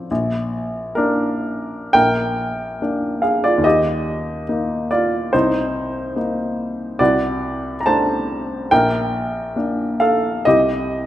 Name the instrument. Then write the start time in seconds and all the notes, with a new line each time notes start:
grand piano
Already playing: A2 F3 C4 F4 C5
0.11 A#1
0.95 A#3 D4 A#4
1.93 A#1 A#4 G5
2.82 A#3 D4
3.22 G#4 F5
3.44 F4 D5
3.58 D#2
3.64 G4 D#5
4.49 A#3 D#4
4.91 F4 D5
5.33 C2 D#4 C5
6.16 A#3 D#4
6.99 C2 F#4 D5
7.81 A#5
7.86 A3 D4 C5 A5
8.71 A#1 A#4 G5
9.56 A#3 D4
10.00 A4 F5
10.45 C2 G4 D#5